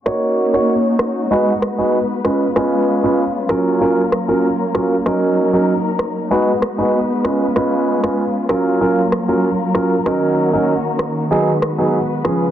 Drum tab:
SD |r-----r---r---r-|r-----r---r---r-|r-----r---r---r-|r--r--r---r---r-|

SD |r-----r---r---r-|